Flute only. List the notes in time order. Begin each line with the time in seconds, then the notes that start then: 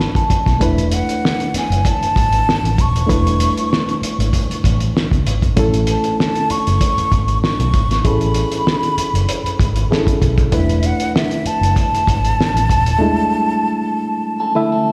0.63 E5
0.94 F#5
1.57 G#5
1.88 A5
2.81 C#6
5.89 A5
6.20 A5
6.51 C#6
7.43 C#6
8.07 B5
10.55 E5
10.86 F#5
11.17 E5
11.47 A5